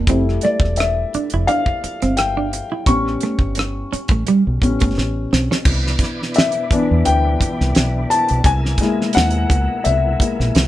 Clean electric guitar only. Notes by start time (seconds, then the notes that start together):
0.10 C4
0.45 A3
0.81 muted clean electric guitar stroke
1.15 D4
1.34 E4
1.49 D4
1.84 muted clean electric guitar stroke
2.02 C4
2.37 D4
2.54 muted clean electric guitar stroke
2.72 E4
2.89 C#4
3.23 A3
3.58 muted clean electric guitar stroke
3.93 C#4
4.11 A3
4.28 G3
4.62 muted clean electric guitar stroke
4.81 A3
4.98 muted clean electric guitar stroke
5.33 C4
5.51 C#4